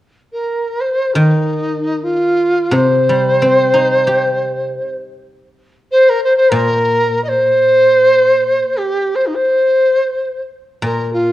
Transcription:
0.33 0.82 A#4 medium
0.81 1.16 C5 medium
1.14 3.20 D#3 soft
1.14 2.05 D#4 medium
2.03 2.75 F4 medium
2.71 4.75 C3 soft
2.71 4.98 C5 medium
3.09 4.43 G3 soft
3.42 4.77 C4 soft
3.74 5.09 D#4 soft
4.07 5.42 G4 soft
5.91 6.11 C5 medium
6.09 6.23 A#4 medium
6.24 6.36 C5 medium
6.37 6.51 C5 medium
6.50 8.59 A#2 medium
6.50 7.23 A#4 medium
7.24 7.30 D#5 medium
7.28 8.79 C5 medium
8.77 9.17 G4 medium
9.15 9.28 C5 medium
9.27 9.37 D#4 medium
9.35 10.42 C5 medium
10.82 11.32 A#2 soft
10.82 11.10 A#4 medium
11.13 11.32 F4 medium

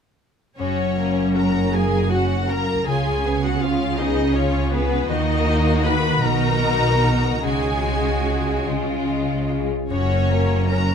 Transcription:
0.58 2.83 F#1 soft
0.58 2.83 F#2 soft
0.58 2.90 F#2 soft
0.58 1.32 C#4 soft
0.58 0.95 C#4 soft
0.58 0.95 F#4 soft
0.58 1.32 C#5 soft
0.97 1.36 A#3 soft
0.97 2.48 C#4 soft
0.97 1.36 A#4 soft
1.35 1.74 C#4 soft
1.35 2.10 F#4 soft
1.35 1.74 F#4 soft
1.35 1.74 A#4 soft
1.35 1.73 A#5 soft
1.73 2.12 A#3 soft
1.73 2.11 G#4 soft
1.73 2.90 A#4 soft
1.73 2.12 A#4 soft
1.73 2.12 G#5 medium
2.11 2.47 C#4 soft
2.11 2.49 F#4 soft
2.11 2.90 F#4 soft
2.11 2.47 F#4 soft
2.11 2.50 F#5 soft
2.48 2.87 A#3 soft
2.48 5.13 C#4 soft
2.48 2.86 A#4 soft
2.48 2.87 A#4 soft
2.48 2.87 A#5 medium
2.86 5.06 C#2 soft
2.86 5.13 C#3 soft
2.86 5.07 C#3 soft
2.86 3.22 C#4 soft
2.86 3.22 F4 soft
2.86 3.42 G#4 soft
2.86 3.42 G#5 medium
3.25 3.61 B3 soft
3.25 4.71 B3 soft
3.25 3.62 G#4 soft
3.42 3.60 F#4 soft
3.42 3.62 F#5 soft
3.60 3.98 C#4 soft
3.60 3.97 F4 soft
3.60 4.33 F4 soft
3.60 3.98 F4 soft
3.60 3.98 F5 medium
3.97 4.35 B3 soft
3.97 4.34 D#4 soft
3.97 5.13 G#4 soft
3.97 4.35 G#4 soft
3.97 4.35 D#5 medium
4.34 4.72 C#4 soft
4.34 4.71 C#4 soft
4.34 5.13 F4 soft
4.34 4.71 F4 soft
4.34 4.72 C#5 medium
4.71 5.09 B3 soft
4.71 5.13 B3 soft
4.71 5.11 B3 soft
4.71 5.10 G#4 soft
4.71 5.10 B4 medium
5.08 6.20 D#2 soft
5.08 6.27 D#3 soft
5.08 6.20 D#3 medium
5.08 6.20 A#3 soft
5.08 5.84 D#4 medium
5.08 6.20 F#4 soft
5.08 5.85 D#5 medium
5.48 5.84 D#4 soft
5.84 7.02 D#4 soft
5.84 7.03 F#4 soft
5.84 6.23 B4 medium
5.84 6.24 B5 medium
6.23 7.45 B1 soft
6.23 7.48 B2 soft
6.23 7.44 B2 soft
6.23 7.44 D#4 soft
6.23 7.42 F#4 soft
6.23 7.44 A#4 medium
6.23 7.45 A#5 medium
6.64 7.48 B3 soft
7.03 7.48 D#4 soft
7.03 8.25 F#4 soft
7.44 9.66 C#2 soft
7.44 8.66 C#3 soft
7.44 9.67 C#3 soft
7.44 8.66 G#3 soft
7.44 8.66 F#4 soft
7.44 8.65 G#4 soft
7.44 8.66 G#5 medium
7.86 9.06 G#3 soft
8.26 8.71 F#4 soft
8.67 9.94 C#3 soft
8.67 9.68 G#3 soft
8.67 9.70 F4 soft
9.08 9.94 G#3 soft
9.49 9.94 F4 soft
9.49 9.94 G#4 soft
9.90 10.95 F#1 soft
9.90 10.95 F#2 soft
9.90 10.95 F#2 medium
9.90 10.28 C#4 soft
9.90 10.66 C#4 soft
9.90 10.28 F#4 soft
9.90 10.66 C#5 medium
10.30 10.95 F#3 soft
10.30 10.70 A#3 soft
10.30 10.70 A#4 soft
10.69 10.95 C#4 soft
10.69 10.95 F#4 soft
10.69 10.95 A#4 soft
10.69 10.95 A#5 medium

